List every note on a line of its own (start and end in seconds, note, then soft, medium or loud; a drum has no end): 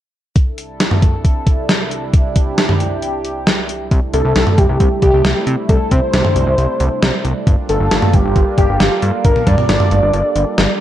0.36 3.88 C2 medium
0.36 3.88 C3 medium
0.36 3.88 D4 medium
0.36 3.88 E4 medium
0.36 2.12 A4 medium
0.36 kick loud
0.36 closed hi-hat medium
0.58 closed hi-hat medium
0.80 snare loud
0.80 closed hi-hat medium
0.91 mid tom medium
1.02 kick medium
1.02 closed hi-hat medium
1.25 kick medium
1.25 closed hi-hat medium
1.47 kick medium
1.47 closed hi-hat medium
1.69 snare loud
1.69 closed hi-hat medium
1.91 closed hi-hat medium
2.14 3.90 G4 medium
2.14 kick loud
2.14 closed hi-hat medium
2.36 kick medium
2.36 closed hi-hat medium
2.58 snare loud
2.58 closed hi-hat medium
2.69 mid tom medium
2.80 closed hi-hat medium
3.02 closed hi-hat medium
3.25 closed hi-hat medium
3.47 snare loud
3.47 closed hi-hat medium
3.69 closed hi-hat medium
3.91 4.00 C2 loud
3.91 7.43 C3 medium
3.91 7.43 G3 medium
3.91 7.43 A3 medium
3.91 10.80 D4 medium
3.91 7.43 E4 medium
3.91 kick loud
3.91 closed hi-hat medium
4.14 4.23 C2 loud
4.14 4.60 A4 loud
4.14 closed hi-hat medium
4.25 4.34 C2 loud
4.36 4.45 C2 loud
4.36 snare loud
4.36 closed hi-hat medium
4.47 mid tom medium
4.58 4.67 C2 medium
4.58 5.02 G4 loud
4.58 kick medium
4.58 closed hi-hat medium
4.69 4.78 C2 medium
4.80 4.89 C2 loud
4.80 kick medium
4.80 closed hi-hat medium
5.02 5.11 C2 medium
5.02 5.44 G4 medium
5.02 kick medium
5.02 closed hi-hat medium
5.14 5.23 C2 medium
5.25 5.34 C2 loud
5.25 snare loud
5.25 closed hi-hat medium
5.47 5.56 C3 loud
5.47 closed hi-hat medium
5.69 5.78 C2 loud
5.69 5.93 A4 loud
5.69 kick loud
5.69 closed hi-hat medium
5.91 6.01 C3 loud
5.91 7.25 C5 loud
5.91 kick medium
5.91 closed hi-hat medium
6.13 6.23 C2 loud
6.13 snare loud
6.13 closed hi-hat medium
6.25 mid tom medium
6.36 6.45 C2 medium
6.36 closed hi-hat medium
6.47 6.56 C2 medium
6.58 6.67 C2 loud
6.58 closed hi-hat medium
6.80 6.89 C2 loud
6.80 closed hi-hat medium
7.02 7.12 C2 loud
7.02 snare loud
7.02 closed hi-hat medium
7.25 7.34 C2 loud
7.25 closed hi-hat medium
7.47 7.56 G1 loud
7.47 10.80 G3 medium
7.47 10.80 A#3 medium
7.47 10.80 F4 medium
7.47 10.80 A4 medium
7.47 kick loud
7.47 closed hi-hat medium
7.69 7.78 G1 medium
7.69 8.15 A4 loud
7.69 closed hi-hat medium
7.80 7.89 G1 medium
7.91 8.00 G1 loud
7.91 snare loud
7.91 closed hi-hat medium
8.02 mid tom medium
8.13 8.23 G1 medium
8.13 8.58 G4 loud
8.13 kick medium
8.13 closed hi-hat medium
8.25 8.34 G1 loud
8.36 8.45 G1 loud
8.36 kick medium
8.36 closed hi-hat medium
8.58 8.67 G1 loud
8.58 8.99 G4 medium
8.58 kick medium
8.58 closed hi-hat medium
8.69 8.78 G1 medium
8.80 8.89 G1 loud
8.80 snare loud
8.80 closed hi-hat medium
9.02 9.12 G2 loud
9.02 closed hi-hat medium
9.24 9.34 G1 loud
9.24 9.48 A#4 loud
9.24 kick loud
9.24 closed hi-hat medium
9.36 mid tom medium
9.47 9.56 G2 medium
9.47 10.80 D5 loud
9.47 kick medium
9.47 closed hi-hat medium
9.47 mid tom medium
9.58 mid tom medium
9.69 9.78 G1 medium
9.69 snare loud
9.69 closed hi-hat medium
9.80 mid tom medium
9.91 10.01 G1 loud
9.91 closed hi-hat medium
10.02 10.12 G1 medium
10.13 10.23 G1 loud
10.13 closed hi-hat medium
10.36 10.45 G1 loud
10.36 closed hi-hat medium
10.58 10.67 G1 loud
10.58 snare loud
10.58 closed hi-hat medium